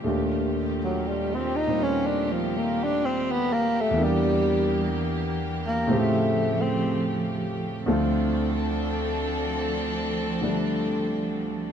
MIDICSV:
0, 0, Header, 1, 4, 480
1, 0, Start_track
1, 0, Tempo, 977199
1, 28, Time_signature, 4, 2, 24, 8
1, 5757, End_track
2, 0, Start_track
2, 0, Title_t, "Tenor saxophone"
2, 0, Program_c, 0, 66
2, 412, Note_on_c, 0, 54, 59
2, 530, Note_on_c, 0, 55, 56
2, 537, Note_off_c, 0, 54, 0
2, 660, Note_on_c, 0, 60, 65
2, 668, Note_off_c, 0, 55, 0
2, 765, Note_on_c, 0, 63, 82
2, 773, Note_off_c, 0, 60, 0
2, 900, Note_on_c, 0, 61, 69
2, 907, Note_off_c, 0, 63, 0
2, 1015, Note_on_c, 0, 62, 67
2, 1022, Note_off_c, 0, 61, 0
2, 1140, Note_on_c, 0, 53, 54
2, 1148, Note_off_c, 0, 62, 0
2, 1265, Note_on_c, 0, 58, 66
2, 1272, Note_off_c, 0, 53, 0
2, 1393, Note_on_c, 0, 62, 75
2, 1400, Note_off_c, 0, 58, 0
2, 1500, Note_on_c, 0, 60, 66
2, 1507, Note_off_c, 0, 62, 0
2, 1628, Note_on_c, 0, 59, 66
2, 1636, Note_off_c, 0, 60, 0
2, 1733, Note_on_c, 0, 58, 72
2, 1741, Note_off_c, 0, 59, 0
2, 1868, Note_on_c, 0, 57, 69
2, 1876, Note_off_c, 0, 58, 0
2, 1982, Note_on_c, 0, 55, 67
2, 1990, Note_off_c, 0, 57, 0
2, 2443, Note_off_c, 0, 55, 0
2, 2783, Note_on_c, 0, 58, 64
2, 2937, Note_on_c, 0, 57, 67
2, 2945, Note_off_c, 0, 58, 0
2, 3250, Note_on_c, 0, 60, 67
2, 3258, Note_off_c, 0, 57, 0
2, 3502, Note_off_c, 0, 60, 0
2, 5757, End_track
3, 0, Start_track
3, 0, Title_t, "String section"
3, 0, Program_c, 1, 48
3, 13, Note_on_c, 1, 67, 67
3, 21, Note_on_c, 1, 57, 54
3, 22, Note_on_c, 1, 65, 55
3, 25, Note_on_c, 1, 51, 57
3, 1923, Note_off_c, 1, 57, 0
3, 1924, Note_off_c, 1, 65, 0
3, 1925, Note_off_c, 1, 51, 0
3, 1941, Note_on_c, 1, 52, 66
3, 1947, Note_on_c, 1, 58, 55
3, 2880, Note_on_c, 1, 53, 64
3, 2881, Note_on_c, 1, 57, 57
3, 2892, Note_off_c, 1, 52, 0
3, 2895, Note_off_c, 1, 58, 0
3, 3836, Note_off_c, 1, 67, 0
3, 3841, Note_off_c, 1, 53, 0
3, 3842, Note_off_c, 1, 57, 0
3, 3864, Note_on_c, 1, 69, 75
3, 3866, Note_on_c, 1, 60, 57
3, 3869, Note_on_c, 1, 62, 62
3, 3870, Note_on_c, 1, 53, 66
3, 5757, Note_off_c, 1, 53, 0
3, 5757, Note_off_c, 1, 60, 0
3, 5757, Note_off_c, 1, 62, 0
3, 5757, Note_off_c, 1, 69, 0
3, 5757, End_track
4, 0, Start_track
4, 0, Title_t, "Grand piano"
4, 0, Program_c, 2, 0
4, 0, Control_c, 2, 64, 127
4, 18, Note_on_c, 2, 39, 42
4, 20, Note_on_c, 2, 46, 36
4, 25, Note_on_c, 2, 57, 41
4, 33, Control_c, 2, 64, 0
4, 34, Note_on_c, 2, 62, 37
4, 35, Note_on_c, 2, 65, 41
4, 38, Note_on_c, 2, 67, 45
4, 132, Control_c, 2, 64, 127
4, 813, Note_off_c, 2, 46, 0
4, 820, Note_on_c, 2, 46, 38
4, 825, Note_on_c, 2, 55, 35
4, 826, Note_on_c, 2, 60, 35
4, 829, Note_on_c, 2, 63, 33
4, 832, Note_off_c, 2, 65, 0
4, 840, Note_on_c, 2, 65, 40
4, 1919, Note_on_c, 2, 40, 55
4, 1933, Note_on_c, 2, 52, 50
4, 1941, Note_off_c, 2, 39, 0
4, 1945, Note_off_c, 2, 46, 0
4, 1945, Note_off_c, 2, 57, 0
4, 1948, Note_off_c, 2, 55, 0
4, 1948, Note_off_c, 2, 60, 0
4, 1949, Note_off_c, 2, 62, 0
4, 1949, Note_off_c, 2, 63, 0
4, 1949, Note_on_c, 2, 58, 46
4, 1951, Note_off_c, 2, 67, 0
4, 1952, Control_c, 2, 64, 0
4, 1955, Note_off_c, 2, 65, 0
4, 1961, Note_on_c, 2, 62, 46
4, 1975, Note_on_c, 2, 67, 57
4, 2048, Control_c, 2, 64, 127
4, 2886, Note_on_c, 2, 45, 53
4, 2888, Note_on_c, 2, 57, 52
4, 2890, Note_off_c, 2, 40, 0
4, 2894, Note_on_c, 2, 60, 54
4, 2897, Note_off_c, 2, 52, 0
4, 2903, Note_off_c, 2, 67, 0
4, 2905, Note_on_c, 2, 65, 52
4, 2906, Note_off_c, 2, 58, 0
4, 2907, Note_on_c, 2, 49, 49
4, 2910, Control_c, 2, 64, 0
4, 2910, Note_on_c, 2, 67, 61
4, 2912, Note_off_c, 2, 62, 0
4, 2996, Control_c, 2, 64, 127
4, 3854, Note_off_c, 2, 45, 0
4, 3855, Note_off_c, 2, 57, 0
4, 3858, Note_off_c, 2, 60, 0
4, 3863, Note_off_c, 2, 65, 0
4, 3863, Note_on_c, 2, 38, 56
4, 3865, Note_off_c, 2, 49, 0
4, 3866, Note_off_c, 2, 67, 0
4, 3868, Note_on_c, 2, 50, 51
4, 3868, Note_on_c, 2, 60, 52
4, 3870, Control_c, 2, 64, 0
4, 3870, Note_on_c, 2, 57, 49
4, 3876, Note_on_c, 2, 65, 58
4, 3967, Control_c, 2, 64, 127
4, 5106, Note_off_c, 2, 50, 0
4, 5114, Note_on_c, 2, 50, 39
4, 5118, Note_off_c, 2, 57, 0
4, 5122, Note_on_c, 2, 55, 36
4, 5125, Note_on_c, 2, 57, 35
4, 5126, Note_on_c, 2, 62, 45
4, 5757, Note_off_c, 2, 38, 0
4, 5757, Note_off_c, 2, 50, 0
4, 5757, Note_off_c, 2, 55, 0
4, 5757, Note_off_c, 2, 57, 0
4, 5757, Note_off_c, 2, 60, 0
4, 5757, Note_off_c, 2, 62, 0
4, 5757, Note_off_c, 2, 65, 0
4, 5757, End_track
0, 0, End_of_file